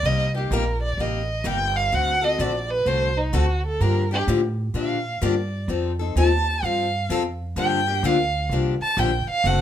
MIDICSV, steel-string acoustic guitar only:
0, 0, Header, 1, 2, 480
1, 0, Start_track
1, 0, Key_signature, -2, "minor"
1, 0, Tempo, 470588
1, 38, Time_signature, 4, 2, 24, 8
1, 9805, End_track
2, 0, Start_track
2, 0, Title_t, "Steel-string acoustic guitar"
2, 0, Program_c, 0, 25
2, 50, Note_on_c, 0, 48, 72
2, 53, Note_on_c, 0, 55, 68
2, 56, Note_on_c, 0, 58, 74
2, 63, Note_on_c, 0, 63, 73
2, 63, Note_on_c, 0, 67, 73
2, 269, Note_off_c, 0, 48, 0
2, 271, Note_off_c, 0, 55, 0
2, 272, Note_off_c, 0, 58, 0
2, 275, Note_off_c, 0, 63, 0
2, 275, Note_off_c, 0, 67, 0
2, 353, Note_on_c, 0, 67, 55
2, 370, Note_on_c, 0, 63, 48
2, 382, Note_on_c, 0, 58, 45
2, 514, Note_off_c, 0, 67, 0
2, 522, Note_off_c, 0, 63, 0
2, 525, Note_off_c, 0, 58, 0
2, 527, Note_on_c, 0, 48, 95
2, 533, Note_on_c, 0, 55, 82
2, 537, Note_on_c, 0, 58, 94
2, 545, Note_on_c, 0, 67, 105
2, 546, Note_on_c, 0, 63, 96
2, 642, Note_off_c, 0, 48, 0
2, 645, Note_off_c, 0, 55, 0
2, 647, Note_off_c, 0, 58, 0
2, 651, Note_off_c, 0, 63, 0
2, 651, Note_off_c, 0, 67, 0
2, 1013, Note_on_c, 0, 48, 54
2, 1021, Note_on_c, 0, 55, 57
2, 1021, Note_on_c, 0, 58, 62
2, 1023, Note_on_c, 0, 63, 69
2, 1026, Note_on_c, 0, 67, 67
2, 1231, Note_off_c, 0, 48, 0
2, 1235, Note_off_c, 0, 55, 0
2, 1235, Note_off_c, 0, 58, 0
2, 1236, Note_off_c, 0, 63, 0
2, 1238, Note_off_c, 0, 67, 0
2, 1469, Note_on_c, 0, 48, 83
2, 1475, Note_on_c, 0, 55, 86
2, 1478, Note_on_c, 0, 58, 91
2, 1483, Note_on_c, 0, 63, 103
2, 1488, Note_on_c, 0, 67, 90
2, 1594, Note_off_c, 0, 48, 0
2, 1596, Note_off_c, 0, 55, 0
2, 1598, Note_off_c, 0, 58, 0
2, 1600, Note_off_c, 0, 63, 0
2, 1603, Note_off_c, 0, 67, 0
2, 1962, Note_on_c, 0, 57, 69
2, 1963, Note_on_c, 0, 50, 69
2, 1968, Note_on_c, 0, 60, 75
2, 1973, Note_on_c, 0, 66, 68
2, 1974, Note_on_c, 0, 69, 73
2, 2186, Note_off_c, 0, 50, 0
2, 2186, Note_off_c, 0, 57, 0
2, 2189, Note_off_c, 0, 60, 0
2, 2191, Note_off_c, 0, 66, 0
2, 2192, Note_off_c, 0, 69, 0
2, 2261, Note_on_c, 0, 69, 54
2, 2277, Note_on_c, 0, 66, 54
2, 2283, Note_on_c, 0, 60, 38
2, 2429, Note_off_c, 0, 69, 0
2, 2436, Note_off_c, 0, 60, 0
2, 2437, Note_off_c, 0, 66, 0
2, 2442, Note_on_c, 0, 50, 85
2, 2445, Note_on_c, 0, 57, 86
2, 2449, Note_on_c, 0, 60, 87
2, 2452, Note_on_c, 0, 66, 92
2, 2455, Note_on_c, 0, 69, 97
2, 2560, Note_off_c, 0, 50, 0
2, 2562, Note_off_c, 0, 57, 0
2, 2563, Note_off_c, 0, 60, 0
2, 2565, Note_off_c, 0, 66, 0
2, 2567, Note_off_c, 0, 69, 0
2, 2918, Note_on_c, 0, 50, 59
2, 2920, Note_on_c, 0, 57, 69
2, 2922, Note_on_c, 0, 60, 56
2, 2931, Note_on_c, 0, 69, 69
2, 2933, Note_on_c, 0, 66, 66
2, 3144, Note_off_c, 0, 50, 0
2, 3145, Note_off_c, 0, 57, 0
2, 3146, Note_off_c, 0, 60, 0
2, 3151, Note_off_c, 0, 66, 0
2, 3151, Note_off_c, 0, 69, 0
2, 3395, Note_on_c, 0, 50, 85
2, 3398, Note_on_c, 0, 57, 84
2, 3402, Note_on_c, 0, 60, 85
2, 3403, Note_on_c, 0, 66, 98
2, 3410, Note_on_c, 0, 69, 103
2, 3517, Note_off_c, 0, 50, 0
2, 3519, Note_off_c, 0, 57, 0
2, 3520, Note_off_c, 0, 60, 0
2, 3521, Note_off_c, 0, 66, 0
2, 3524, Note_off_c, 0, 69, 0
2, 3882, Note_on_c, 0, 50, 69
2, 3888, Note_on_c, 0, 53, 68
2, 3889, Note_on_c, 0, 58, 74
2, 3891, Note_on_c, 0, 62, 75
2, 3895, Note_on_c, 0, 67, 80
2, 4106, Note_off_c, 0, 50, 0
2, 4109, Note_off_c, 0, 53, 0
2, 4110, Note_off_c, 0, 58, 0
2, 4111, Note_off_c, 0, 62, 0
2, 4113, Note_off_c, 0, 67, 0
2, 4192, Note_on_c, 0, 67, 56
2, 4205, Note_on_c, 0, 62, 51
2, 4219, Note_on_c, 0, 58, 43
2, 4354, Note_off_c, 0, 67, 0
2, 4358, Note_off_c, 0, 58, 0
2, 4361, Note_off_c, 0, 62, 0
2, 4366, Note_on_c, 0, 50, 92
2, 4369, Note_on_c, 0, 53, 94
2, 4370, Note_on_c, 0, 58, 86
2, 4376, Note_on_c, 0, 62, 97
2, 4381, Note_on_c, 0, 67, 110
2, 4482, Note_off_c, 0, 50, 0
2, 4484, Note_off_c, 0, 53, 0
2, 4485, Note_off_c, 0, 58, 0
2, 4487, Note_off_c, 0, 62, 0
2, 4490, Note_off_c, 0, 67, 0
2, 4835, Note_on_c, 0, 50, 64
2, 4843, Note_on_c, 0, 58, 71
2, 4844, Note_on_c, 0, 53, 60
2, 4848, Note_on_c, 0, 62, 68
2, 4850, Note_on_c, 0, 67, 64
2, 5063, Note_off_c, 0, 50, 0
2, 5067, Note_off_c, 0, 53, 0
2, 5067, Note_off_c, 0, 58, 0
2, 5069, Note_off_c, 0, 62, 0
2, 5070, Note_off_c, 0, 67, 0
2, 5319, Note_on_c, 0, 50, 87
2, 5322, Note_on_c, 0, 53, 81
2, 5328, Note_on_c, 0, 58, 99
2, 5330, Note_on_c, 0, 62, 86
2, 5333, Note_on_c, 0, 67, 113
2, 5439, Note_off_c, 0, 50, 0
2, 5440, Note_off_c, 0, 53, 0
2, 5443, Note_off_c, 0, 58, 0
2, 5444, Note_off_c, 0, 62, 0
2, 5446, Note_off_c, 0, 67, 0
2, 5800, Note_on_c, 0, 53, 62
2, 5808, Note_on_c, 0, 60, 75
2, 5814, Note_on_c, 0, 63, 77
2, 5820, Note_on_c, 0, 69, 71
2, 6025, Note_off_c, 0, 53, 0
2, 6029, Note_off_c, 0, 60, 0
2, 6032, Note_off_c, 0, 63, 0
2, 6035, Note_off_c, 0, 69, 0
2, 6113, Note_on_c, 0, 69, 55
2, 6129, Note_on_c, 0, 63, 52
2, 6141, Note_on_c, 0, 60, 40
2, 6274, Note_off_c, 0, 69, 0
2, 6282, Note_off_c, 0, 63, 0
2, 6283, Note_off_c, 0, 60, 0
2, 6290, Note_on_c, 0, 53, 96
2, 6296, Note_on_c, 0, 60, 104
2, 6299, Note_on_c, 0, 69, 99
2, 6300, Note_on_c, 0, 63, 92
2, 6404, Note_off_c, 0, 53, 0
2, 6407, Note_off_c, 0, 60, 0
2, 6408, Note_off_c, 0, 69, 0
2, 6409, Note_off_c, 0, 63, 0
2, 6770, Note_on_c, 0, 53, 62
2, 6780, Note_on_c, 0, 60, 62
2, 6788, Note_on_c, 0, 63, 68
2, 6791, Note_on_c, 0, 69, 66
2, 6989, Note_off_c, 0, 53, 0
2, 6994, Note_off_c, 0, 60, 0
2, 6998, Note_off_c, 0, 63, 0
2, 7000, Note_off_c, 0, 69, 0
2, 7242, Note_on_c, 0, 53, 88
2, 7245, Note_on_c, 0, 60, 94
2, 7254, Note_on_c, 0, 63, 97
2, 7260, Note_on_c, 0, 69, 114
2, 7359, Note_off_c, 0, 53, 0
2, 7361, Note_off_c, 0, 60, 0
2, 7365, Note_off_c, 0, 63, 0
2, 7368, Note_off_c, 0, 69, 0
2, 7715, Note_on_c, 0, 50, 80
2, 7719, Note_on_c, 0, 53, 77
2, 7727, Note_on_c, 0, 58, 73
2, 7728, Note_on_c, 0, 62, 84
2, 7731, Note_on_c, 0, 67, 85
2, 7941, Note_off_c, 0, 50, 0
2, 7943, Note_off_c, 0, 53, 0
2, 7947, Note_off_c, 0, 58, 0
2, 7947, Note_off_c, 0, 62, 0
2, 7949, Note_off_c, 0, 67, 0
2, 8032, Note_on_c, 0, 67, 57
2, 8047, Note_on_c, 0, 62, 52
2, 8058, Note_on_c, 0, 58, 42
2, 8193, Note_off_c, 0, 67, 0
2, 8199, Note_off_c, 0, 58, 0
2, 8200, Note_off_c, 0, 62, 0
2, 8201, Note_on_c, 0, 50, 99
2, 8210, Note_on_c, 0, 53, 101
2, 8211, Note_on_c, 0, 62, 104
2, 8212, Note_on_c, 0, 58, 89
2, 8219, Note_on_c, 0, 67, 90
2, 8318, Note_off_c, 0, 50, 0
2, 8322, Note_off_c, 0, 53, 0
2, 8323, Note_off_c, 0, 58, 0
2, 8323, Note_off_c, 0, 62, 0
2, 8327, Note_off_c, 0, 67, 0
2, 8684, Note_on_c, 0, 50, 59
2, 8690, Note_on_c, 0, 53, 67
2, 8695, Note_on_c, 0, 58, 60
2, 8696, Note_on_c, 0, 62, 65
2, 8699, Note_on_c, 0, 67, 78
2, 8905, Note_off_c, 0, 50, 0
2, 8908, Note_off_c, 0, 53, 0
2, 8910, Note_off_c, 0, 58, 0
2, 8911, Note_off_c, 0, 62, 0
2, 8912, Note_off_c, 0, 67, 0
2, 9155, Note_on_c, 0, 50, 90
2, 9160, Note_on_c, 0, 58, 91
2, 9164, Note_on_c, 0, 53, 92
2, 9168, Note_on_c, 0, 62, 94
2, 9168, Note_on_c, 0, 67, 109
2, 9274, Note_off_c, 0, 50, 0
2, 9277, Note_off_c, 0, 58, 0
2, 9279, Note_off_c, 0, 53, 0
2, 9280, Note_off_c, 0, 67, 0
2, 9281, Note_off_c, 0, 62, 0
2, 9634, Note_on_c, 0, 50, 73
2, 9642, Note_on_c, 0, 57, 78
2, 9646, Note_on_c, 0, 60, 84
2, 9648, Note_on_c, 0, 66, 77
2, 9657, Note_on_c, 0, 69, 81
2, 9805, Note_off_c, 0, 50, 0
2, 9805, Note_off_c, 0, 57, 0
2, 9805, Note_off_c, 0, 60, 0
2, 9805, Note_off_c, 0, 66, 0
2, 9805, Note_off_c, 0, 69, 0
2, 9805, End_track
0, 0, End_of_file